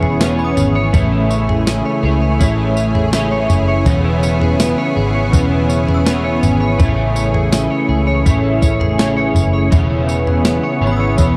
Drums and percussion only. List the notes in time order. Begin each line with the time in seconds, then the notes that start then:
0.03 floor tom
0.21 snare, tambourine
0.57 floor tom, tambourine
0.94 kick, floor tom, tambourine
1.31 tambourine
1.49 floor tom
1.67 snare, tambourine
2.41 kick, tambourine
2.77 tambourine
2.95 floor tom
3.13 snare, tambourine
3.50 floor tom, tambourine
3.86 kick, floor tom, tambourine
4.23 tambourine
4.41 floor tom
4.60 snare, tambourine
5.33 kick, tambourine
5.70 tambourine
5.89 floor tom
6.06 snare, tambourine
6.43 floor tom, tambourine
6.80 kick, floor tom, tambourine
7.16 tambourine
7.34 floor tom
7.52 snare, tambourine
8.26 kick, floor tom, tambourine
8.62 kick, tambourine
8.81 floor tom
8.99 snare, tambourine
9.36 floor tom, tambourine
9.72 kick, floor tom, tambourine
10.09 tambourine
10.27 floor tom
10.45 snare, tambourine
11.18 kick, tambourine